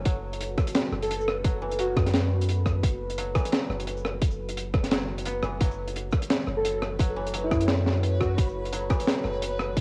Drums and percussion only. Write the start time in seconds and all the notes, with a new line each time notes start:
0.05 kick, closed hi-hat
0.33 closed hi-hat
0.40 closed hi-hat
0.58 kick, cross-stick, shaker
0.67 closed hi-hat
0.75 snare, closed hi-hat
0.92 cross-stick
1.02 closed hi-hat
1.11 closed hi-hat
1.20 shaker
1.28 cross-stick
1.44 kick, closed hi-hat
1.71 closed hi-hat
1.79 closed hi-hat
1.96 kick, cross-stick, shaker
2.06 snare, closed hi-hat
2.13 snare, closed hi-hat
2.41 closed hi-hat
2.49 closed hi-hat
2.66 kick, cross-stick, shaker
2.83 kick, closed hi-hat
3.10 closed hi-hat
3.18 closed hi-hat
3.35 kick, cross-stick, shaker
3.45 closed hi-hat
3.52 snare, closed hi-hat
3.70 cross-stick
3.80 closed hi-hat
3.87 closed hi-hat
3.97 shaker
4.05 cross-stick
4.22 kick, closed hi-hat
4.30 shaker
4.49 closed hi-hat
4.57 closed hi-hat
4.74 kick, cross-stick
4.84 snare, closed hi-hat
4.91 snare, closed hi-hat
5.18 closed hi-hat
5.26 closed hi-hat
5.43 cross-stick, shaker
5.61 kick, closed hi-hat
5.71 shaker
5.88 closed hi-hat
5.96 closed hi-hat
6.11 kick, cross-stick, shaker
6.22 closed hi-hat
6.30 snare, closed hi-hat
6.47 cross-stick
6.65 closed hi-hat
6.82 cross-stick
7.00 kick, closed hi-hat
7.27 closed hi-hat
7.34 closed hi-hat
7.51 kick, cross-stick, shaker
7.61 closed hi-hat
7.68 snare, closed hi-hat
7.87 snare
8.03 closed hi-hat
8.21 kick, cross-stick, shaker
8.38 kick, closed hi-hat
8.48 shaker
8.65 closed hi-hat
8.73 closed hi-hat
8.90 kick, cross-stick, shaker
9.00 closed hi-hat
9.07 snare, closed hi-hat
9.24 cross-stick
9.42 closed hi-hat
9.59 cross-stick
9.77 kick, closed hi-hat